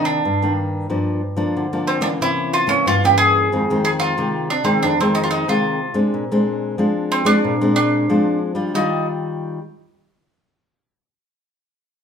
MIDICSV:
0, 0, Header, 1, 3, 480
1, 0, Start_track
1, 0, Key_signature, -3, "major"
1, 0, Tempo, 654308
1, 658, Time_signature, 4, 2, 24, 8
1, 8829, End_track
2, 0, Start_track
2, 0, Title_t, "Mandolin"
2, 0, Program_c, 0, 25
2, 37, Note_on_c, 0, 62, 77
2, 382, Note_off_c, 0, 62, 0
2, 1375, Note_on_c, 0, 60, 76
2, 1482, Note_on_c, 0, 62, 86
2, 1501, Note_off_c, 0, 60, 0
2, 1519, Note_off_c, 0, 62, 0
2, 1629, Note_on_c, 0, 64, 92
2, 1857, Note_off_c, 0, 64, 0
2, 1860, Note_on_c, 0, 65, 88
2, 1972, Note_off_c, 0, 65, 0
2, 1972, Note_on_c, 0, 61, 86
2, 2088, Note_off_c, 0, 61, 0
2, 2109, Note_on_c, 0, 65, 90
2, 2228, Note_off_c, 0, 65, 0
2, 2238, Note_on_c, 0, 67, 88
2, 2327, Note_off_c, 0, 67, 0
2, 2330, Note_on_c, 0, 68, 105
2, 2813, Note_off_c, 0, 68, 0
2, 2822, Note_on_c, 0, 68, 91
2, 2859, Note_off_c, 0, 68, 0
2, 2931, Note_on_c, 0, 65, 98
2, 3300, Note_off_c, 0, 65, 0
2, 3303, Note_on_c, 0, 62, 82
2, 3408, Note_on_c, 0, 60, 76
2, 3426, Note_off_c, 0, 62, 0
2, 3526, Note_off_c, 0, 60, 0
2, 3540, Note_on_c, 0, 62, 85
2, 3653, Note_off_c, 0, 62, 0
2, 3673, Note_on_c, 0, 60, 76
2, 3776, Note_on_c, 0, 63, 83
2, 3779, Note_off_c, 0, 60, 0
2, 3801, Note_off_c, 0, 63, 0
2, 3841, Note_on_c, 0, 65, 66
2, 3889, Note_off_c, 0, 65, 0
2, 3893, Note_on_c, 0, 63, 83
2, 4017, Note_off_c, 0, 63, 0
2, 4028, Note_on_c, 0, 65, 76
2, 4360, Note_off_c, 0, 65, 0
2, 5220, Note_on_c, 0, 60, 92
2, 5325, Note_off_c, 0, 60, 0
2, 5328, Note_on_c, 0, 62, 100
2, 5683, Note_off_c, 0, 62, 0
2, 5692, Note_on_c, 0, 62, 90
2, 6147, Note_off_c, 0, 62, 0
2, 6420, Note_on_c, 0, 63, 84
2, 6643, Note_off_c, 0, 63, 0
2, 8829, End_track
3, 0, Start_track
3, 0, Title_t, "Nylon-string guitar"
3, 0, Program_c, 1, 24
3, 0, Note_on_c, 1, 48, 71
3, 0, Note_on_c, 1, 51, 59
3, 0, Note_on_c, 1, 58, 54
3, 0, Note_on_c, 1, 62, 65
3, 154, Note_off_c, 1, 48, 0
3, 155, Note_off_c, 1, 51, 0
3, 158, Note_off_c, 1, 62, 0
3, 159, Note_off_c, 1, 58, 0
3, 185, Note_on_c, 1, 43, 67
3, 311, Note_on_c, 1, 51, 59
3, 316, Note_on_c, 1, 58, 57
3, 319, Note_on_c, 1, 62, 60
3, 626, Note_off_c, 1, 51, 0
3, 629, Note_off_c, 1, 58, 0
3, 631, Note_off_c, 1, 62, 0
3, 638, Note_off_c, 1, 43, 0
3, 657, Note_on_c, 1, 43, 60
3, 658, Note_on_c, 1, 53, 54
3, 660, Note_on_c, 1, 58, 52
3, 662, Note_on_c, 1, 62, 62
3, 882, Note_off_c, 1, 53, 0
3, 885, Note_off_c, 1, 58, 0
3, 885, Note_off_c, 1, 62, 0
3, 1002, Note_on_c, 1, 53, 60
3, 1007, Note_on_c, 1, 58, 55
3, 1008, Note_on_c, 1, 62, 73
3, 1115, Note_off_c, 1, 43, 0
3, 1149, Note_on_c, 1, 50, 72
3, 1212, Note_off_c, 1, 53, 0
3, 1215, Note_off_c, 1, 58, 0
3, 1215, Note_off_c, 1, 62, 0
3, 1267, Note_on_c, 1, 53, 69
3, 1269, Note_on_c, 1, 58, 64
3, 1271, Note_on_c, 1, 62, 64
3, 1466, Note_off_c, 1, 53, 0
3, 1466, Note_off_c, 1, 58, 0
3, 1466, Note_off_c, 1, 62, 0
3, 1473, Note_on_c, 1, 52, 59
3, 1476, Note_on_c, 1, 58, 70
3, 1479, Note_on_c, 1, 61, 67
3, 1601, Note_off_c, 1, 50, 0
3, 1622, Note_on_c, 1, 48, 72
3, 1929, Note_off_c, 1, 52, 0
3, 1929, Note_off_c, 1, 58, 0
3, 1932, Note_off_c, 1, 61, 0
3, 1957, Note_on_c, 1, 52, 59
3, 1962, Note_on_c, 1, 58, 57
3, 1963, Note_on_c, 1, 61, 66
3, 2078, Note_off_c, 1, 48, 0
3, 2097, Note_on_c, 1, 43, 71
3, 2171, Note_off_c, 1, 52, 0
3, 2173, Note_off_c, 1, 58, 0
3, 2173, Note_off_c, 1, 61, 0
3, 2230, Note_on_c, 1, 52, 55
3, 2234, Note_on_c, 1, 58, 58
3, 2235, Note_on_c, 1, 61, 63
3, 2548, Note_off_c, 1, 52, 0
3, 2548, Note_off_c, 1, 58, 0
3, 2550, Note_off_c, 1, 61, 0
3, 2556, Note_off_c, 1, 43, 0
3, 2585, Note_on_c, 1, 41, 68
3, 2589, Note_on_c, 1, 56, 49
3, 2591, Note_on_c, 1, 51, 53
3, 2593, Note_on_c, 1, 60, 58
3, 2667, Note_off_c, 1, 51, 0
3, 2667, Note_off_c, 1, 56, 0
3, 2669, Note_off_c, 1, 60, 0
3, 2716, Note_on_c, 1, 51, 61
3, 2720, Note_on_c, 1, 56, 64
3, 2722, Note_on_c, 1, 60, 72
3, 3031, Note_off_c, 1, 51, 0
3, 3033, Note_off_c, 1, 56, 0
3, 3033, Note_off_c, 1, 60, 0
3, 3040, Note_off_c, 1, 41, 0
3, 3062, Note_on_c, 1, 48, 70
3, 3065, Note_on_c, 1, 51, 58
3, 3066, Note_on_c, 1, 56, 57
3, 3069, Note_on_c, 1, 60, 64
3, 3288, Note_off_c, 1, 51, 0
3, 3290, Note_off_c, 1, 56, 0
3, 3290, Note_off_c, 1, 60, 0
3, 3403, Note_on_c, 1, 51, 61
3, 3408, Note_on_c, 1, 56, 64
3, 3409, Note_on_c, 1, 60, 67
3, 3518, Note_off_c, 1, 48, 0
3, 3544, Note_on_c, 1, 41, 71
3, 3614, Note_off_c, 1, 51, 0
3, 3616, Note_off_c, 1, 60, 0
3, 3617, Note_off_c, 1, 56, 0
3, 3669, Note_on_c, 1, 51, 61
3, 3674, Note_on_c, 1, 56, 63
3, 3679, Note_on_c, 1, 60, 59
3, 3988, Note_off_c, 1, 51, 0
3, 3989, Note_off_c, 1, 56, 0
3, 3990, Note_off_c, 1, 60, 0
3, 3999, Note_off_c, 1, 41, 0
3, 4022, Note_on_c, 1, 48, 73
3, 4025, Note_on_c, 1, 51, 57
3, 4025, Note_on_c, 1, 56, 54
3, 4029, Note_on_c, 1, 60, 58
3, 4248, Note_off_c, 1, 51, 0
3, 4249, Note_off_c, 1, 56, 0
3, 4250, Note_off_c, 1, 60, 0
3, 4359, Note_on_c, 1, 56, 62
3, 4361, Note_on_c, 1, 60, 59
3, 4366, Note_on_c, 1, 62, 58
3, 4478, Note_off_c, 1, 48, 0
3, 4503, Note_on_c, 1, 46, 63
3, 4572, Note_off_c, 1, 56, 0
3, 4573, Note_off_c, 1, 60, 0
3, 4576, Note_off_c, 1, 62, 0
3, 4633, Note_on_c, 1, 56, 68
3, 4637, Note_on_c, 1, 60, 65
3, 4638, Note_on_c, 1, 62, 65
3, 4949, Note_off_c, 1, 56, 0
3, 4951, Note_off_c, 1, 60, 0
3, 4951, Note_off_c, 1, 62, 0
3, 4958, Note_off_c, 1, 46, 0
3, 4974, Note_on_c, 1, 53, 66
3, 4975, Note_on_c, 1, 56, 58
3, 4979, Note_on_c, 1, 60, 54
3, 4983, Note_on_c, 1, 62, 56
3, 5301, Note_off_c, 1, 56, 0
3, 5301, Note_off_c, 1, 60, 0
3, 5304, Note_off_c, 1, 62, 0
3, 5317, Note_on_c, 1, 56, 61
3, 5323, Note_on_c, 1, 60, 61
3, 5326, Note_on_c, 1, 62, 73
3, 5434, Note_off_c, 1, 53, 0
3, 5461, Note_on_c, 1, 46, 63
3, 5531, Note_off_c, 1, 56, 0
3, 5534, Note_off_c, 1, 60, 0
3, 5534, Note_off_c, 1, 62, 0
3, 5585, Note_on_c, 1, 56, 66
3, 5589, Note_on_c, 1, 60, 54
3, 5594, Note_on_c, 1, 62, 66
3, 5904, Note_off_c, 1, 56, 0
3, 5906, Note_off_c, 1, 60, 0
3, 5909, Note_off_c, 1, 62, 0
3, 5917, Note_off_c, 1, 46, 0
3, 5938, Note_on_c, 1, 53, 67
3, 5940, Note_on_c, 1, 56, 58
3, 5941, Note_on_c, 1, 60, 54
3, 5945, Note_on_c, 1, 62, 61
3, 6261, Note_off_c, 1, 56, 0
3, 6263, Note_off_c, 1, 60, 0
3, 6263, Note_off_c, 1, 62, 0
3, 6271, Note_on_c, 1, 55, 54
3, 6274, Note_on_c, 1, 62, 56
3, 6279, Note_on_c, 1, 65, 65
3, 6395, Note_off_c, 1, 53, 0
3, 6410, Note_off_c, 1, 55, 0
3, 6414, Note_on_c, 1, 51, 58
3, 6418, Note_on_c, 1, 55, 58
3, 6420, Note_off_c, 1, 65, 0
3, 6429, Note_on_c, 1, 65, 64
3, 6489, Note_off_c, 1, 62, 0
3, 7031, Note_off_c, 1, 51, 0
3, 7031, Note_off_c, 1, 55, 0
3, 7031, Note_off_c, 1, 65, 0
3, 8829, End_track
0, 0, End_of_file